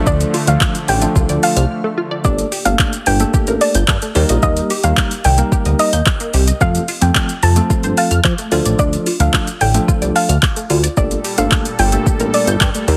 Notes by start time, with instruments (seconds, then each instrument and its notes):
Already playing: analog synth pad D3 F3 A3, tine electric piano F3 A3 D4 F4 A4
0.07 analog synth bass D2, synth arpeggio sound D3, synth pluck D5, kick, shaker
0.21 closed hi-hat, shaker
0.34 synth arpeggio sound F4, open hi-hat, shaker
0.47 analog synth bass D2, tine electric piano F3 A3 D4 F4 A4, synth pluck F5, closed hi-hat, shaker
0.61 kick, clap, shaker
0.75 closed hi-hat, shaker
0.88 analog synth bass A1, synth arpeggio sound D3, synth pluck G5, open hi-hat, shaker
1.02 tine electric piano F3 A3 D4 F4 A4, synth arpeggio sound A3, closed hi-hat, shaker
1.16 analog synth bass C2, synth arpeggio sound F4, kick, shaker
1.29 analog synth bass D2, synth arpeggio sound D5, closed hi-hat, shaker
1.43 synth pluck F5, synth arpeggio sound A5, open hi-hat, shaker
1.56 analog synth bass C2, synth arpeggio sound F6, closed hi-hat, shaker
1.84 synth arpeggio sound A3
1.98 synth arpeggio sound F4
2.11 synth arpeggio sound D5
2.24 analog synth bass G1, synth arpeggio sound A#2, tine electric piano A3 A#3 D4 G4 A4, synth pluck D5, kick, shaker
2.38 closed hi-hat, shaker
2.52 synth arpeggio sound G4, open hi-hat, shaker
2.65 analog synth bass G1, tine electric piano A3 A#3 D4 G4 A4, synth pluck F5, closed hi-hat, shaker
2.79 kick, clap, shaker
2.93 closed hi-hat, shaker
3.06 analog synth bass G1, synth arpeggio sound A#2, synth pluck G5, open hi-hat, shaker
3.20 tine electric piano A3 A#3 D4 G4 A4, synth arpeggio sound A3, closed hi-hat, shaker
3.34 synth arpeggio sound G4, kick, shaker
3.47 analog synth bass A1, synth arpeggio sound A#4, closed hi-hat, shaker
3.61 synth pluck D5, synth arpeggio sound A5, open hi-hat, shaker
3.75 analog synth bass G1, synth arpeggio sound G6, closed hi-hat, shaker
3.88 analog synth bass G2, kick, clap, shaker
4.02 synth arpeggio sound A3, closed hi-hat, shaker
4.15 analog synth bass D#2, tine electric piano G3 A#3 D#4 G4 A#4, synth arpeggio sound G4, open hi-hat, shaker
4.29 analog synth bass A#1, synth arpeggio sound D#5, closed hi-hat, shaker
4.43 analog synth bass D#2, synth arpeggio sound D#3, synth pluck D#5, kick, shaker
4.57 closed hi-hat, shaker
4.70 synth arpeggio sound G4, open hi-hat, shaker
4.83 analog synth bass D#2, tine electric piano G3 A#3 D#4 G4 A#4, synth pluck F5, closed hi-hat, shaker
4.97 kick, clap, shaker
5.11 closed hi-hat, shaker
5.24 analog synth bass C2, synth arpeggio sound D#3, synth pluck G5, open hi-hat, shaker
5.38 tine electric piano G3 A#3 D#4 G4 A#4, synth arpeggio sound A#3, closed hi-hat, shaker
5.52 synth arpeggio sound G4, kick, shaker
5.65 analog synth bass D2, synth arpeggio sound D#5, closed hi-hat, shaker
5.79 synth pluck D#5, synth arpeggio sound A#5, open hi-hat, shaker
5.93 analog synth bass D#2, synth arpeggio sound G6, closed hi-hat, shaker
6.06 kick, clap, shaker
6.20 synth arpeggio sound A#3, closed hi-hat, shaker
6.34 analog synth bass C2, synth arpeggio sound G4, open hi-hat, shaker
6.47 synth arpeggio sound D#5, closed hi-hat, shaker
6.61 analog synth bass F2, synth arpeggio sound C3, tine electric piano F3 A3 C4 F4 A4, synth pluck F5, kick, shaker
6.75 closed hi-hat, shaker
6.88 synth arpeggio sound F4, open hi-hat, shaker
7.01 analog synth bass F2, tine electric piano F3 A3 C4 F4 A4, synth pluck G5, closed hi-hat, shaker
7.15 kick, clap, shaker
7.29 closed hi-hat, shaker
7.43 analog synth bass F2, synth arpeggio sound C3, synth pluck A5, open hi-hat, shaker
7.56 tine electric piano F3 A3 C4 F4 A4, synth arpeggio sound A3, closed hi-hat, shaker
7.70 synth arpeggio sound F4, kick, shaker
7.83 analog synth bass G2, synth arpeggio sound C5, closed hi-hat, shaker
7.97 synth pluck F5, synth arpeggio sound A5, open hi-hat, shaker
8.11 analog synth bass F2, synth arpeggio sound F6, closed hi-hat, shaker
8.24 analog synth bass F3, kick, clap, shaker
8.38 synth arpeggio sound A3, closed hi-hat, shaker
8.52 analog synth bass D2, tine electric piano F3 A3 D4 F4 A4, synth arpeggio sound F4, open hi-hat, shaker
8.65 analog synth bass A1, synth arpeggio sound D5, closed hi-hat, shaker
8.79 analog synth bass D2, synth arpeggio sound D3, synth pluck D5, kick, shaker
8.93 closed hi-hat, shaker
9.06 synth arpeggio sound F4, open hi-hat, shaker
9.20 analog synth bass D2, tine electric piano F3 A3 D4 F4 A4, synth pluck F5, closed hi-hat, shaker
9.34 kick, clap, shaker
9.47 closed hi-hat, shaker
9.61 analog synth bass A1, synth arpeggio sound D3, synth pluck G5, open hi-hat, shaker
9.74 tine electric piano F3 A3 D4 F4 A4, synth arpeggio sound A3, closed hi-hat, shaker
9.88 synth arpeggio sound F4, kick, shaker
10.02 analog synth bass C2, synth arpeggio sound D5, closed hi-hat, shaker
10.15 synth pluck F5, synth arpeggio sound A5, open hi-hat, shaker
10.29 analog synth bass D2, synth arpeggio sound F6, closed hi-hat, shaker
10.43 kick, clap, shaker
10.56 synth arpeggio sound A3, closed hi-hat, shaker
10.70 analog synth bass D2, synth arpeggio sound F4, open hi-hat, shaker
10.83 synth arpeggio sound D5, closed hi-hat, shaker
10.97 analog synth bass G1, synth arpeggio sound A#2, analog synth pad A#2 G3 A4, tine electric piano A3 A#3 D4 G4 A4, synth pluck D5, kick, shaker
11.11 closed hi-hat, shaker
11.24 synth arpeggio sound G4, open hi-hat, shaker
11.38 analog synth bass G1, tine electric piano A3 A#3 D4 G4 A4, synth pluck F5, closed hi-hat, shaker
11.52 kick, clap, shaker
11.65 closed hi-hat, shaker
11.79 analog synth bass G1, synth arpeggio sound A#2, synth pluck G5, open hi-hat, shaker
11.92 tine electric piano A3 A#3 D4 G4 A4, synth arpeggio sound A3, closed hi-hat, shaker
12.06 synth arpeggio sound G4, kick, shaker
12.20 analog synth bass A1, synth arpeggio sound A#4, closed hi-hat, shaker
12.34 synth pluck D5, synth arpeggio sound A5, open hi-hat, shaker
12.47 analog synth bass G1, synth arpeggio sound G6, closed hi-hat, shaker
12.61 analog synth bass G2, kick, clap, shaker
12.75 synth arpeggio sound A3, closed hi-hat, shaker
12.88 analog synth bass D#2, analog synth pad D#3 A#3, tine electric piano G3 A#3 D#4 G4 A#4, synth arpeggio sound G4, open hi-hat, shaker